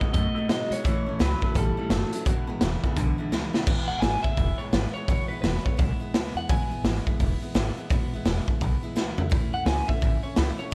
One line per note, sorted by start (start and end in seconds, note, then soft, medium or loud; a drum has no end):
0.00 0.12 B2 medium
0.00 0.13 G#3 medium
0.00 0.13 B3 soft
0.00 0.14 D#4 medium
0.00 0.14 F#4 medium
0.00 0.11 D#5 loud
0.00 kick medium
0.13 0.29 F#2 medium
0.13 0.33 B2 medium
0.13 0.36 F#3 medium
0.13 0.34 A3 medium
0.13 0.36 B3 medium
0.13 0.36 D#4 medium
0.13 0.35 F#4 medium
0.13 0.48 D#5 loud
0.13 kick loud
0.13 closed hi-hat medium
0.34 0.47 B2 medium
0.34 0.47 A3 loud
0.34 0.50 D#4 soft
0.34 0.49 F#4 medium
0.34 muted upright bass stroke medium
0.38 0.49 B3 soft
0.48 0.63 G#2 loud
0.48 0.69 B2 medium
0.48 0.71 B2 medium
0.48 0.72 F#3 medium
0.48 0.69 G#3 loud
0.48 0.72 B3 medium
0.48 0.71 D#4 medium
0.48 0.69 F#4 medium
0.48 0.72 D#5 medium
0.48 snare loud
0.48 closed hi-hat medium
0.70 0.79 B2 medium
0.70 0.83 B2 medium
0.70 0.83 G#3 loud
0.70 0.85 B3 soft
0.70 0.85 D#4 medium
0.70 0.84 F#4 medium
0.70 1.20 C#5 loud
0.70 closed hi-hat medium
0.84 0.99 A1 medium
0.84 1.06 A2 medium
0.84 1.04 A2 medium
0.84 1.04 E3 loud
0.84 1.07 E3 medium
0.84 1.07 A3 medium
0.84 1.07 C#4 medium
0.84 1.05 E4 medium
0.84 kick loud
0.84 closed hi-hat medium
1.06 1.15 A1 medium
1.06 1.19 A2 medium
1.06 1.19 E3 medium
1.06 1.19 A3 soft
1.06 1.20 C#4 soft
1.06 1.20 E4 medium
1.19 1.35 C#2 medium
1.19 1.42 A2 medium
1.19 1.40 A2 medium
1.19 1.42 E3 medium
1.19 1.40 F#3 medium
1.19 1.42 A3 medium
1.19 1.42 C#4 medium
1.19 1.40 E4 medium
1.19 1.56 B4 medium
1.19 snare loud
1.19 closed hi-hat medium
1.41 1.54 A2 medium
1.41 1.54 F#3 medium
1.41 1.54 A3 medium
1.41 1.55 C#4 medium
1.41 1.55 E4 medium
1.41 kick medium
1.54 1.70 A1 medium
1.54 1.76 A2 medium
1.54 1.77 E3 medium
1.54 1.75 G3 medium
1.54 1.77 A3 medium
1.54 1.77 C#4 medium
1.54 1.76 E4 medium
1.54 2.22 A4 medium
1.54 kick loud
1.54 closed hi-hat medium
1.77 1.90 A2 medium
1.77 1.90 G3 medium
1.77 1.90 A3 soft
1.77 1.90 C#4 soft
1.77 1.90 E4 medium
1.77 muted upright bass stroke medium
1.89 2.04 F#1 medium
1.89 2.12 A2 medium
1.89 2.10 A2 medium
1.89 2.13 E3 medium
1.89 2.11 F#3 loud
1.89 2.13 A3 medium
1.89 2.13 C#4 loud
1.89 2.12 E4 medium
1.89 snare loud
1.89 closed hi-hat medium
2.11 2.25 A2 medium
2.11 2.25 F#3 medium
2.11 2.26 C#4 medium
2.11 2.26 E4 medium
2.11 muted upright bass stroke medium
2.11 closed hi-hat medium
2.16 2.26 A3 medium
2.25 2.41 E1 medium
2.25 2.48 E2 medium
2.25 2.46 E2 medium
2.25 2.48 B2 medium
2.25 2.46 B2 medium
2.25 2.48 E3 medium
2.25 2.48 G#3 medium
2.25 2.47 B3 medium
2.25 2.46 E4 medium
2.25 kick loud
2.25 closed hi-hat medium
2.47 2.57 G#1 medium
2.47 2.59 E2 medium
2.47 2.60 B2 medium
2.47 2.61 E3 medium
2.47 2.61 G#3 soft
2.47 2.61 B3 medium
2.47 2.61 E4 medium
2.61 2.76 E1 medium
2.61 2.81 E2 medium
2.61 2.83 E2 medium
2.61 2.83 B2 medium
2.61 2.81 C#3 loud
2.61 2.84 E3 medium
2.61 2.84 G#3 medium
2.61 2.84 B3 medium
2.61 2.83 E4 loud
2.61 snare loud
2.61 closed hi-hat medium
2.83 2.95 E2 medium
2.83 2.95 C#3 medium
2.83 2.96 E3 soft
2.83 2.97 G#3 medium
2.83 2.97 B3 medium
2.83 2.97 E4 medium
2.83 kick medium
2.96 3.11 B1 medium
2.96 3.16 E2 medium
2.96 3.17 D3 loud
2.96 3.19 E3 medium
2.96 3.19 G#3 medium
2.96 3.18 B3 medium
2.96 3.17 E4 medium
2.96 kick loud
2.96 closed hi-hat medium
3.18 3.30 E2 medium
3.18 3.31 D3 medium
3.18 3.32 E3 soft
3.18 3.32 G#3 medium
3.18 3.32 B3 medium
3.18 3.31 E4 medium
3.31 3.46 C#2 loud
3.31 3.51 E2 medium
3.31 3.54 E2 loud
3.31 3.54 B2 loud
3.31 3.52 C#3 medium
3.31 3.54 E3 medium
3.31 3.55 G#3 medium
3.31 3.53 B3 loud
3.31 3.52 E4 loud
3.31 snare medium
3.53 3.66 E2 medium
3.53 3.66 C#3 medium
3.53 3.66 E3 soft
3.53 3.66 G#3 medium
3.53 3.67 B3 medium
3.53 3.67 E4 medium
3.53 snare medium
3.66 3.82 E1 medium
3.66 3.89 E2 medium
3.66 3.89 B2 medium
3.66 3.89 E3 medium
3.66 3.89 G#3 medium
3.66 3.89 B3 loud
3.66 3.88 E4 medium
3.66 kick loud
3.66 crash loud
3.88 3.98 E1 medium
3.88 4.01 E3 soft
3.88 4.02 G#3 soft
3.88 4.02 B3 medium
3.88 4.02 E4 soft
3.88 4.00 F#5 loud
4.00 4.17 G#1 medium
4.00 4.24 E2 medium
4.00 4.24 B2 medium
4.00 4.25 E3 medium
4.00 4.24 G#3 medium
4.00 4.23 B3 medium
4.00 4.22 E4 medium
4.00 4.22 G#5 loud
4.00 snare loud
4.00 open hi-hat medium
4.23 4.36 E3 soft
4.23 4.37 G#3 soft
4.23 4.38 B3 medium
4.23 4.37 E4 medium
4.23 4.60 E5 loud
4.23 muted upright bass stroke medium
4.23 kick medium
4.37 4.52 E1 medium
4.37 4.60 E3 medium
4.37 4.60 G#3 medium
4.37 4.59 B3 medium
4.37 4.58 E4 medium
4.37 kick loud
4.37 open hi-hat soft
4.58 4.72 E3 soft
4.58 4.73 G#3 soft
4.58 4.73 B3 soft
4.58 4.73 E4 medium
4.58 4.73 C#5 loud
4.58 muted upright bass stroke medium
4.72 4.87 G#1 medium
4.72 4.95 E2 medium
4.72 4.95 B2 medium
4.72 4.95 E3 medium
4.72 4.95 G#3 medium
4.72 4.95 B3 loud
4.72 4.94 E4 loud
4.72 4.93 B4 medium
4.72 snare loud
4.72 open hi-hat medium
4.94 5.09 G#3 soft
4.94 5.09 B3 medium
4.94 5.08 E4 medium
4.94 5.28 C#5 loud
4.94 muted upright bass stroke medium
4.98 5.09 E3 soft
5.08 5.23 E1 loud
5.08 5.30 E2 medium
5.08 5.31 B2 medium
5.08 5.31 E3 medium
5.08 5.31 G#3 medium
5.08 5.30 B3 medium
5.08 5.30 E4 medium
5.08 kick loud
5.08 open hi-hat medium
5.28 5.39 G#1 medium
5.28 5.44 B3 soft
5.28 5.44 E4 medium
5.28 5.41 B4 medium
5.32 5.43 E3 soft
5.32 5.43 G#3 soft
5.42 5.58 E1 medium
5.42 5.66 E2 medium
5.42 5.66 B2 medium
5.42 5.66 E3 medium
5.42 5.65 G#3 medium
5.42 5.65 B3 medium
5.42 5.64 E4 medium
5.42 5.65 B4 medium
5.42 snare loud
5.42 open hi-hat medium
5.65 5.76 E3 medium
5.65 5.77 G#3 soft
5.65 5.78 B3 medium
5.65 5.78 E4 medium
5.65 5.78 C#5 medium
5.65 kick medium
5.77 5.94 B1 medium
5.77 6.00 E3 medium
5.77 6.01 G#3 medium
5.77 6.00 B3 medium
5.77 5.99 E4 medium
5.77 6.36 E5 medium
5.77 kick loud
5.77 open hi-hat medium
6.00 6.14 E3 soft
6.00 6.15 G#3 medium
6.00 6.14 B3 medium
6.00 6.14 E4 medium
6.00 muted upright bass stroke medium
6.13 6.28 C#2 loud
6.13 6.36 E2 medium
6.13 6.37 B2 medium
6.13 6.37 E3 medium
6.13 6.36 G#3 medium
6.13 6.35 B3 loud
6.13 6.34 E4 medium
6.13 snare loud
6.13 open hi-hat medium
6.34 6.44 E2 medium
6.34 6.48 E3 soft
6.34 6.49 G#3 soft
6.34 6.49 B3 medium
6.34 6.49 E4 medium
6.34 6.50 F#5 medium
6.49 6.64 E1 medium
6.49 6.71 E2 medium
6.49 6.71 B2 medium
6.49 6.71 E3 medium
6.49 6.72 G#3 medium
6.49 6.71 B3 medium
6.49 6.70 E4 medium
6.49 6.83 G#5 medium
6.49 kick loud
6.49 open hi-hat medium
6.70 6.79 E1 medium
6.70 6.84 E3 soft
6.70 6.84 G#3 medium
6.70 6.85 B3 medium
6.70 6.85 E4 medium
6.84 6.99 G#1 medium
6.84 7.07 E2 medium
6.84 7.07 B2 medium
6.84 7.07 E3 medium
6.84 7.07 G#3 medium
6.84 7.06 B3 medium
6.84 7.05 E4 medium
6.84 snare loud
6.84 open hi-hat medium
7.07 7.18 E3 medium
7.07 7.19 G#3 medium
7.07 7.20 B3 medium
7.07 7.20 E4 medium
7.07 kick medium
7.20 7.35 E1 medium
7.20 7.42 E3 medium
7.20 7.42 G#3 medium
7.20 7.41 B3 medium
7.20 7.40 E4 medium
7.20 kick loud
7.20 open hi-hat medium
7.41 7.54 E3 medium
7.41 7.55 G#3 medium
7.41 7.55 B3 medium
7.41 7.55 E4 medium
7.41 muted upright bass stroke medium
7.54 7.70 G#1 loud
7.54 7.77 E2 loud
7.54 7.77 B2 loud
7.54 7.77 E3 medium
7.54 7.77 G#3 loud
7.54 7.77 B3 loud
7.54 7.76 E4 loud
7.54 snare loud
7.54 open hi-hat medium
7.77 7.90 E3 medium
7.77 7.91 G#3 medium
7.77 7.91 B3 medium
7.77 7.90 E4 medium
7.90 8.05 E1 loud
7.90 8.13 E2 medium
7.90 8.13 B2 medium
7.90 8.13 E3 medium
7.90 8.13 G#3 medium
7.90 8.13 B3 medium
7.90 8.12 E4 medium
7.90 kick loud
7.90 open hi-hat medium
8.13 8.21 G#1 medium
8.13 8.25 E3 soft
8.13 8.25 G#3 medium
8.13 8.26 B3 medium
8.13 8.26 E4 medium
8.25 8.40 E1 loud
8.25 8.47 E2 medium
8.25 8.48 B2 medium
8.25 8.48 E3 medium
8.25 8.48 G#3 medium
8.25 8.47 B3 loud
8.25 8.46 E4 loud
8.25 snare loud
8.25 open hi-hat medium
8.47 8.59 E3 medium
8.47 8.60 G#3 medium
8.47 8.61 B3 medium
8.47 8.61 E4 medium
8.47 kick medium
8.61 8.76 B1 medium
8.61 8.83 E3 medium
8.61 8.83 G#3 medium
8.61 8.82 B3 medium
8.61 8.82 E4 medium
8.61 kick loud
8.61 open hi-hat medium
8.82 8.95 E3 soft
8.82 8.95 G#3 medium
8.82 8.96 B3 medium
8.82 8.96 E4 medium
8.82 muted upright bass stroke medium
8.95 9.10 C#2 loud
8.95 9.18 E2 loud
8.95 9.18 B2 medium
8.95 9.18 E3 medium
8.95 9.18 G#3 loud
8.95 9.17 B3 loud
8.95 9.16 E4 loud
8.95 snare medium
9.18 9.27 E2 medium
9.18 9.30 E3 medium
9.18 9.30 G#3 medium
9.18 9.31 B3 medium
9.18 9.30 E4 medium
9.18 floor tom medium
9.30 9.46 A1 loud
9.30 9.52 A2 medium
9.30 9.53 E3 medium
9.30 9.53 A3 medium
9.30 9.53 C#4 loud
9.30 9.52 E4 loud
9.30 kick loud
9.30 open hi-hat medium
9.53 9.62 A1 medium
9.53 9.66 A3 soft
9.53 9.67 C#4 soft
9.53 9.66 E4 medium
9.53 9.66 F#5 loud
9.66 9.81 C#2 medium
9.66 9.88 A2 medium
9.66 9.88 E3 medium
9.66 9.89 A3 medium
9.66 9.88 C#4 medium
9.66 9.87 E4 medium
9.66 9.89 G#5 loud
9.66 snare loud
9.66 open hi-hat medium
9.88 10.01 A3 soft
9.88 10.02 C#4 medium
9.88 10.01 E4 medium
9.88 10.23 E5 loud
9.88 kick medium
10.01 10.17 A1 medium
10.01 10.23 E3 medium
10.01 10.24 A3 medium
10.01 10.24 C#4 medium
10.01 10.22 E4 medium
10.01 kick loud
10.01 open hi-hat soft
10.23 10.36 A3 soft
10.23 10.36 C#4 soft
10.23 10.36 E4 medium
10.23 10.37 C#5 medium
10.23 muted upright bass stroke medium
10.36 10.52 C#2 loud
10.36 10.58 A2 medium
10.36 10.59 E3 medium
10.36 10.59 A3 medium
10.36 10.59 C#4 medium
10.36 10.57 E4 medium
10.36 10.43 B4 medium
10.36 snare loud
10.36 open hi-hat medium
10.58 10.71 A3 soft
10.58 10.71 C#4 medium
10.58 10.71 E4 medium
10.58 10.74 C#5 loud
10.58 muted upright bass stroke medium